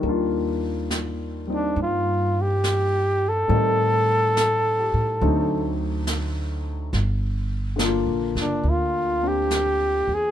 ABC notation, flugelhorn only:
X:1
M:4/4
L:1/8
Q:"Swing" 1/4=70
K:Eb
V:1 name="Flugelhorn"
z3 D F G2 =A- | =A4- A z3 | z3 D F G2 A |]